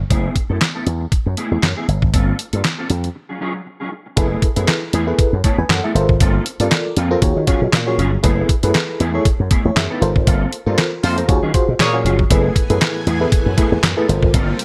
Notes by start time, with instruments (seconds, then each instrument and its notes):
0.00 muted clean electric guitar stroke
0.10 slap bass F#1, clean electric guitar A3 B3 E4 G#4, kick, closed hi-hat
0.36 muted clean electric guitar stroke, kick, closed hi-hat
0.50 slap bass F#2, clean electric guitar A3 B3 E4 A4
0.61 muted clean electric guitar stroke, snare, clap, closed hi-hat
0.75 clean electric guitar A3 B3 E4 A4
0.86 slap bass E2, muted clean electric guitar stroke, closed hi-hat
1.00 muted clean electric guitar stroke
1.12 muted slap bass stroke, muted clean electric guitar stroke, kick, closed hi-hat
1.26 slap bass F#2, muted clean electric guitar stroke
1.37 clean electric guitar A3 B3 E4 G#4, closed hi-hat
1.51 slap bass E2, clean electric guitar A3 B3 E4 G#4
1.63 slap bass F#2, muted clean electric guitar stroke, snare, clap, closed hi-hat
1.77 clean electric guitar A3 B3 E4 G#4
1.88 slap bass G1, muted clean electric guitar stroke, closed hi-hat
2.02 slap bass G#1, muted clean electric guitar stroke, kick
2.13 slap bass G1, clean electric guitar A#3 C4 F4 A4, kick, closed hi-hat
2.39 muted clean electric guitar stroke, closed hi-hat
2.53 slap bass G2, clean electric guitar A#3 C4 F4 A4, closed hi-hat
2.64 muted clean electric guitar stroke, snare, clap, closed hi-hat
2.78 clean electric guitar A#3 C4 F4 A4
2.89 slap bass F2, muted clean electric guitar stroke, closed hi-hat
3.04 muted clean electric guitar stroke, closed hi-hat
3.15 muted clean electric guitar stroke
3.29 clean electric guitar F#3 C#4 F4 G#4
3.40 clean electric guitar F#3 C#4 F4 G#4
3.55 muted clean electric guitar stroke
3.66 muted clean electric guitar stroke
3.80 clean electric guitar F#3 C#4 F4 G#4
3.91 muted clean electric guitar stroke
4.06 muted clean electric guitar stroke
4.16 slap bass F#1, clean electric guitar A3 B3 E4 G#4, fm electric piano E4 G#4 A4 B4, kick, closed hi-hat
4.42 muted clean electric guitar stroke, kick, closed hi-hat
4.56 slap bass F#2, clean electric guitar A3 B3 E4 G#4, fm electric piano E4 G#4 A4 B4, closed hi-hat
4.68 muted clean electric guitar stroke, snare, clap, closed hi-hat
4.82 muted clean electric guitar stroke
4.93 slap bass E2, clean electric guitar A3 B3 E4 G#4, closed hi-hat
5.07 clean electric guitar A3 B3 E4 G#4, fm electric piano E4 G#4 A4 B4
5.19 muted slap bass stroke, muted clean electric guitar stroke, kick, closed hi-hat
5.33 slap bass F#2, muted clean electric guitar stroke
5.44 clean electric guitar A3 B3 E4 G#4, fm electric piano C#5 A5, kick, closed hi-hat
5.58 slap bass E2, fm electric piano B4 G#5, muted clean electric guitar stroke
5.69 slap bass F#2, fm electric piano A4 F#5, snare, clap, closed hi-hat
5.84 clean electric guitar A3 B3 E4 A4, fm electric piano G#4 E5
5.95 slap bass G1, fm electric piano F4 A4 A#4 C5, muted clean electric guitar stroke, closed hi-hat
6.09 slap bass G#1, muted clean electric guitar stroke, kick
6.20 slap bass G1, clean electric guitar A#3 C4 F4 A4, kick, closed hi-hat
6.46 muted clean electric guitar stroke, closed hi-hat
6.60 slap bass G2, clean electric guitar A#3 C4 F4 A4, fm electric piano F4 A4 A#4 D5, closed hi-hat
6.71 snare, clap, closed hi-hat
6.86 muted clean electric guitar stroke
6.97 slap bass F2, clean electric guitar A#3 C4 F4 A4, closed hi-hat
7.11 clean electric guitar A#3 C4 F4 A#4, fm electric piano F4 A4 A#4 C5
7.22 slap bass D#2, fm electric piano F4 F#4 G#4 C#5, muted clean electric guitar stroke, kick, closed hi-hat
7.36 slap bass D#3, muted clean electric guitar stroke
7.47 clean electric guitar F#3 C#4 F4 G#4, fm electric piano F4 F#4 G#4 C#5, kick, closed hi-hat
7.62 slap bass B2, muted clean electric guitar stroke
7.73 slap bass A#2, muted clean electric guitar stroke, snare, clap, closed hi-hat
7.86 clean electric guitar F#3 C#4 F4 G#4, fm electric piano F4 F#4 G#4 C#5
7.98 slap bass G1, clean electric guitar F#3 C#4 F4 G#4, closed hi-hat
8.12 muted clean electric guitar stroke
8.23 slap bass F#1, clean electric guitar A3 B3 E4 G#4, fm electric piano E4 G#4 A4 B4, kick, closed hi-hat
8.49 muted clean electric guitar stroke, kick, closed hi-hat
8.63 slap bass F#2, clean electric guitar A3 B3 E4 G#4, fm electric piano E4 G#4 A4 B4, closed hi-hat
8.74 muted clean electric guitar stroke, snare, clap, closed hi-hat
8.89 muted clean electric guitar stroke
8.99 slap bass E2, clean electric guitar A3 B3 E4 G#4, closed hi-hat
9.14 clean electric guitar A3 B3 E4 G#4, fm electric piano E4 G#4 A4 C#5
9.25 muted clean electric guitar stroke, muted slap bass stroke, kick, closed hi-hat
9.39 slap bass F#2, muted clean electric guitar stroke
9.50 clean electric guitar A3 B3 E4 G#4, kick, closed hi-hat
9.65 slap bass E2, fm electric piano E4 C#5, muted clean electric guitar stroke
9.76 slap bass F#2, fm electric piano G#4 E5, snare, clap, closed hi-hat
9.90 clean electric guitar A3 B3 E4 A4, fm electric piano D#4 B4
10.01 slap bass G1, fm electric piano F4 A4 A#4 C5, muted clean electric guitar stroke, closed hi-hat
10.16 slap bass G#1, muted clean electric guitar stroke, kick
10.27 slap bass G1, clean electric guitar A#3 C4 F4 A4, kick, closed hi-hat
10.52 muted clean electric guitar stroke, closed hi-hat
10.66 slap bass G2, clean electric guitar A#3 C4 F4 A4, fm electric piano F4 A4 A#4 C5
10.78 snare, clap, closed hi-hat
10.92 muted clean electric guitar stroke
11.03 slap bass F2, horn section A3 F4 C5, clean electric guitar A#3 C4 F4 A4, open hi-hat
11.17 clean electric guitar A#3 C4 A#4, fm electric piano F4 A4 A#4 C5, closed hi-hat
11.28 slap bass D#2, fm electric piano F4 F#4 G#4 C#5, muted clean electric guitar stroke, kick, closed hi-hat
11.43 slap bass D#3, clean electric guitar F#3 C#4 F4 G#4
11.54 fm electric piano F4 F#4 G#4 C5, muted clean electric guitar stroke, kick, closed hi-hat
11.68 slap bass B2, muted clean electric guitar stroke
11.79 slap bass A#2, horn section A#3 G#4 C#5, muted clean electric guitar stroke, snare, clap, closed hi-hat
11.93 clean electric guitar F#3 C#4 F4 G#4, fm electric piano F4 F#4 G#4 C#5
12.05 slap bass G1, clean electric guitar F#3 C#4 F4 G#4, closed hi-hat
12.19 muted clean electric guitar stroke, kick
12.30 slap bass F#1, string machine A2 E3 B3 G#5, clean electric guitar A3 B3 E4 G#4, fm electric piano E4 G#4 A4 B4, kick, closed hi-hat
12.56 muted clean electric guitar stroke, kick, closed hi-hat
12.70 slap bass F#2, clean electric guitar A3 B3 E4 G#4, fm electric piano E4 G#4 A4 B4, closed hi-hat
12.81 muted clean electric guitar stroke, snare, clap, closed hi-hat
12.95 muted clean electric guitar stroke
13.06 slap bass E2, clean electric guitar A3 B3 E4 G#4, closed hi-hat
13.20 clean electric guitar A3 B3 E4 G#4, fm electric piano E4 G#4 A4 B4
13.32 muted clean electric guitar stroke, muted slap bass stroke, kick, closed hi-hat
13.46 slap bass F#2, muted clean electric guitar stroke
13.57 clean electric guitar A3 B3 E4 G#4, fm electric piano E4 G#4 A4 B4, kick, closed hi-hat
13.72 slap bass E2, muted clean electric guitar stroke
13.83 slap bass F#2, muted clean electric guitar stroke, snare, clap, closed hi-hat
13.97 clean electric guitar A3 B3 E4 A4, fm electric piano E4 G#4 A4 B4
14.08 slap bass G1, string machine C3 G3 A#3 F4, fm electric piano F4 A4 A#4 C5, muted clean electric guitar stroke, closed hi-hat
14.22 slap bass G#1, muted clean electric guitar stroke, kick
14.34 slap bass G1, clean electric guitar A#3 C4 F4 A4, kick, closed hi-hat
14.59 muted clean electric guitar stroke, closed hi-hat